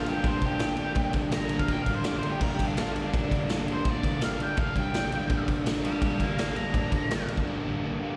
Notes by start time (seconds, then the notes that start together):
Already playing: G2 D3
0.04 A#3 D4, ride
0.08 G3 G4
0.22 D3 G3 A#3, kick, ride
0.26 D4 C5
0.40 D3 G3 A#3 D4, kick, ride
0.44 G2 G4
0.58 D3 G3 A#3, snare, ride
0.63 D4
0.76 A#3 D4, ride
0.80 G3
0.94 G2 D3 G3 A#3, kick, ride
0.98 D4
1.13 A#3 D4, kick, ride
1.17 G3
1.30 G2 D3 G3 A#3 A#5, snare, ride
1.34 D4
1.48 G3 A#3 D4, ride
1.59 F5, kick
1.68 D3 G3 A#3 G5, kick, ride
1.72 D4
1.82 D4 F5, kick, ride
1.87 G2 D3 G3 A#3
1.93 C5
2.04 D3 G3 A#3 D5, snare, ride
2.08 D4
2.18 C5
2.23 A#3 D4, ride
2.27 G3 G4
2.40 G2 D3 G3 A#3 A#4, kick, crash
2.45 D4
2.54 D4 G4
2.59 G3 A#3, kick, ride
2.66 D4
2.77 G2 D3 G3 A#3 F4, snare, ride
2.81 D4
2.92 D4, ride
2.97 G3 A#3
3.05 D4
3.13 D3 G3 A#3 D4, kick, ride
3.30 G2 D3 G3 A#3 D4, kick, ride
3.47 D3 G3 A#3, snare, ride
3.52 D4
3.67 G3 A#3 D4, ride
3.72 C5
3.84 G2 D3 G3 A#3, kick, ride
3.89 D4 D5
4.03 A#3 D4, kick, ride
4.09 G3
4.21 G2 D3 G3 A#3 F5, snare, ride
4.26 D4
4.39 G3 A#3 D4 G5, ride
4.56 D3 G3 A#3 D4 F5, kick, ride
4.74 D3 G3 A#3 D4 G5, kick, ride
4.78 G2
4.93 D3 G3 A#3, snare, ride
4.97 D4
5.10 A#3 D4, ride
5.14 G3
5.28 G2 D3 G3 A#3, kick, ride
5.33 D4
5.46 A#3 D4, kick, ride
5.50 G3
5.64 G2 D3 G3 A#3, snare, ride
5.68 D4
5.82 A#3 D4 D5 G5, ride
5.86 G3
6.01 D3 G3 A#3 D5 G5, kick, ride
6.06 D4
6.18 D3 G3 A#3 D4 F5 A#5, kick, ride
6.23 G2
6.37 D3 G3 A#3 D4 F5 A#5, snare, ride
6.54 A#3 D4 A#5, ride
6.59 G3
6.72 G2 D3 G3 A#3, kick, ride
6.76 D4
6.91 A#3 D4, kick, ride
6.95 G3
7.09 G2 D3 G3 A#3 D4, snare, ride
7.27 A#3 D4, ride
7.31 G3
7.37 kick
7.45 D3 G3 A#3
7.50 D4
7.64 D3 G3 A#3 D4
7.69 G2
7.82 D3 G3 A#3
7.87 D4
8.00 A#3 D4
8.04 G3